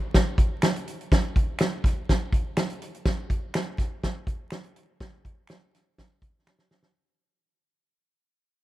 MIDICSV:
0, 0, Header, 1, 2, 480
1, 0, Start_track
1, 0, Tempo, 487409
1, 1092, Time_signature, 4, 2, 24, 8
1, 8501, End_track
2, 0, Start_track
2, 0, Title_t, "Drums"
2, 142, Note_on_c, 9, 38, 98
2, 143, Note_on_c, 9, 36, 88
2, 147, Note_on_c, 9, 42, 85
2, 240, Note_off_c, 9, 38, 0
2, 241, Note_off_c, 9, 36, 0
2, 246, Note_off_c, 9, 42, 0
2, 374, Note_on_c, 9, 36, 99
2, 381, Note_on_c, 9, 42, 73
2, 472, Note_off_c, 9, 36, 0
2, 479, Note_off_c, 9, 42, 0
2, 611, Note_on_c, 9, 26, 88
2, 618, Note_on_c, 9, 42, 84
2, 620, Note_on_c, 9, 38, 115
2, 709, Note_off_c, 9, 26, 0
2, 717, Note_off_c, 9, 42, 0
2, 719, Note_off_c, 9, 38, 0
2, 747, Note_on_c, 9, 42, 53
2, 846, Note_off_c, 9, 42, 0
2, 861, Note_on_c, 9, 42, 67
2, 960, Note_off_c, 9, 42, 0
2, 991, Note_on_c, 9, 42, 43
2, 1089, Note_off_c, 9, 42, 0
2, 1100, Note_on_c, 9, 36, 114
2, 1106, Note_on_c, 9, 42, 94
2, 1107, Note_on_c, 9, 38, 124
2, 1199, Note_off_c, 9, 36, 0
2, 1205, Note_off_c, 9, 42, 0
2, 1206, Note_off_c, 9, 38, 0
2, 1338, Note_on_c, 9, 36, 99
2, 1346, Note_on_c, 9, 42, 73
2, 1437, Note_off_c, 9, 36, 0
2, 1444, Note_off_c, 9, 42, 0
2, 1563, Note_on_c, 9, 26, 92
2, 1568, Note_on_c, 9, 42, 92
2, 1583, Note_on_c, 9, 38, 115
2, 1661, Note_off_c, 9, 26, 0
2, 1667, Note_off_c, 9, 42, 0
2, 1681, Note_off_c, 9, 38, 0
2, 1812, Note_on_c, 9, 36, 100
2, 1826, Note_on_c, 9, 42, 78
2, 1830, Note_on_c, 9, 38, 33
2, 1911, Note_off_c, 9, 36, 0
2, 1924, Note_off_c, 9, 42, 0
2, 1928, Note_off_c, 9, 38, 0
2, 2061, Note_on_c, 9, 36, 93
2, 2062, Note_on_c, 9, 38, 90
2, 2067, Note_on_c, 9, 42, 79
2, 2160, Note_off_c, 9, 36, 0
2, 2161, Note_off_c, 9, 38, 0
2, 2166, Note_off_c, 9, 42, 0
2, 2289, Note_on_c, 9, 36, 103
2, 2300, Note_on_c, 9, 42, 74
2, 2388, Note_off_c, 9, 36, 0
2, 2399, Note_off_c, 9, 42, 0
2, 2529, Note_on_c, 9, 26, 91
2, 2531, Note_on_c, 9, 42, 78
2, 2533, Note_on_c, 9, 38, 111
2, 2628, Note_off_c, 9, 26, 0
2, 2630, Note_off_c, 9, 42, 0
2, 2632, Note_off_c, 9, 38, 0
2, 2655, Note_on_c, 9, 42, 55
2, 2753, Note_off_c, 9, 42, 0
2, 2774, Note_on_c, 9, 42, 74
2, 2872, Note_off_c, 9, 42, 0
2, 2900, Note_on_c, 9, 42, 44
2, 2998, Note_off_c, 9, 42, 0
2, 3008, Note_on_c, 9, 42, 93
2, 3009, Note_on_c, 9, 36, 117
2, 3009, Note_on_c, 9, 38, 100
2, 3106, Note_off_c, 9, 42, 0
2, 3107, Note_off_c, 9, 38, 0
2, 3108, Note_off_c, 9, 36, 0
2, 3249, Note_on_c, 9, 36, 92
2, 3255, Note_on_c, 9, 42, 72
2, 3348, Note_off_c, 9, 36, 0
2, 3353, Note_off_c, 9, 42, 0
2, 3484, Note_on_c, 9, 42, 95
2, 3486, Note_on_c, 9, 26, 93
2, 3498, Note_on_c, 9, 38, 127
2, 3582, Note_off_c, 9, 42, 0
2, 3585, Note_off_c, 9, 26, 0
2, 3596, Note_off_c, 9, 38, 0
2, 3726, Note_on_c, 9, 36, 91
2, 3734, Note_on_c, 9, 42, 79
2, 3738, Note_on_c, 9, 38, 32
2, 3824, Note_off_c, 9, 36, 0
2, 3832, Note_off_c, 9, 42, 0
2, 3836, Note_off_c, 9, 38, 0
2, 3973, Note_on_c, 9, 36, 78
2, 3974, Note_on_c, 9, 38, 100
2, 3979, Note_on_c, 9, 42, 87
2, 4072, Note_off_c, 9, 36, 0
2, 4072, Note_off_c, 9, 38, 0
2, 4077, Note_off_c, 9, 42, 0
2, 4203, Note_on_c, 9, 36, 100
2, 4213, Note_on_c, 9, 42, 68
2, 4302, Note_off_c, 9, 36, 0
2, 4312, Note_off_c, 9, 42, 0
2, 4436, Note_on_c, 9, 26, 86
2, 4448, Note_on_c, 9, 42, 81
2, 4450, Note_on_c, 9, 38, 115
2, 4535, Note_off_c, 9, 26, 0
2, 4547, Note_off_c, 9, 42, 0
2, 4548, Note_off_c, 9, 38, 0
2, 4571, Note_on_c, 9, 42, 48
2, 4669, Note_off_c, 9, 42, 0
2, 4687, Note_on_c, 9, 42, 77
2, 4786, Note_off_c, 9, 42, 0
2, 4929, Note_on_c, 9, 36, 111
2, 4931, Note_on_c, 9, 42, 86
2, 4932, Note_on_c, 9, 38, 112
2, 5027, Note_off_c, 9, 36, 0
2, 5030, Note_off_c, 9, 42, 0
2, 5031, Note_off_c, 9, 38, 0
2, 5169, Note_on_c, 9, 36, 90
2, 5175, Note_on_c, 9, 42, 76
2, 5268, Note_off_c, 9, 36, 0
2, 5274, Note_off_c, 9, 42, 0
2, 5391, Note_on_c, 9, 26, 92
2, 5401, Note_on_c, 9, 42, 90
2, 5415, Note_on_c, 9, 38, 117
2, 5489, Note_off_c, 9, 26, 0
2, 5499, Note_off_c, 9, 42, 0
2, 5513, Note_off_c, 9, 38, 0
2, 5658, Note_on_c, 9, 42, 84
2, 5661, Note_on_c, 9, 38, 34
2, 5756, Note_off_c, 9, 42, 0
2, 5760, Note_off_c, 9, 38, 0
2, 5892, Note_on_c, 9, 38, 97
2, 5894, Note_on_c, 9, 36, 78
2, 5897, Note_on_c, 9, 42, 85
2, 5991, Note_off_c, 9, 38, 0
2, 5993, Note_off_c, 9, 36, 0
2, 5996, Note_off_c, 9, 42, 0
2, 6124, Note_on_c, 9, 36, 93
2, 6130, Note_on_c, 9, 42, 69
2, 6222, Note_off_c, 9, 36, 0
2, 6229, Note_off_c, 9, 42, 0
2, 6370, Note_on_c, 9, 38, 56
2, 6372, Note_on_c, 9, 26, 96
2, 6468, Note_off_c, 9, 38, 0
2, 6471, Note_off_c, 9, 26, 0
2, 6487, Note_on_c, 9, 38, 61
2, 6585, Note_off_c, 9, 38, 0
2, 6608, Note_on_c, 9, 38, 88
2, 6706, Note_off_c, 9, 38, 0
2, 6724, Note_on_c, 9, 38, 81
2, 6822, Note_off_c, 9, 38, 0
2, 8501, End_track
0, 0, End_of_file